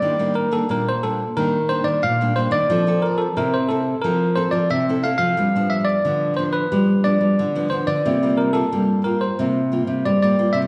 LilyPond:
<<
  \new Staff \with { instrumentName = "Tine electric piano" } { \time 4/4 \key f \major \tempo 4 = 90 d''8 bes'16 a'16 bes'16 c''16 a'8 bes'8 c''16 d''16 f''8 c''16 d''16~ | d''8 bes'16 a'16 bes'16 c''16 a'8 bes'8 c''16 d''16 e''8 f''16 f''16~ | f''8 e''16 d''8. c''16 b'8. d''4 c''16 d''16~ | d''8 bes'16 a'8. bes'16 c''4~ c''16 d''16 d''8 e''16 | }
  \new Staff \with { instrumentName = "Nylon-string guitar" } { \time 4/4 \key f \major << { <g bes d'>16 <g bes d'>8 <g bes d'>16 <g bes d'>16 r16 <g bes d'>16 r16 <g bes d'>16 r16 <g bes d'>8 r16 <g bes d'>16 <g bes d'>16 r16 | <c' e' a'>16 <c' e' a'>8. <c' e' a'>16 r16 <c' e' a'>8 <c' e' a'>16 r16 <c' e' a'>8 r16 <c' e' a'>16 <c' e' a'>16 r16 | <f b d'>16 <f b d'>8. <f b d'>8 <f b d'>8 <f b d'>16 r16 <f b d'>8. <f b d'>16 <f b d'>16 r16 | <g bes f'>16 <g bes f'>8 <g bes f'>16 <g bes f'>8 <g bes f'>16 r16 <g bes f'>16 r16 <g bes f'>8. <g bes f'>16 <g bes f'>8 | } \\ { ees4 bes,4 ees4 bes,4 | f4 c4 f4 c4 | g,4 d4 g,4 d4 | c4 g,4 c4 g,4 | } >> }
  \new Staff \with { instrumentName = "Nylon-string guitar" } { \clef bass \time 4/4 \key f \major ees4 bes,4 ees8. ees16 bes,8. ees16 | f4 c4 f8. f16 c8. f16 | g4 d4 g8. g16 d8. d16 | c4 g4 c8. c16 g8. c16 | }
>>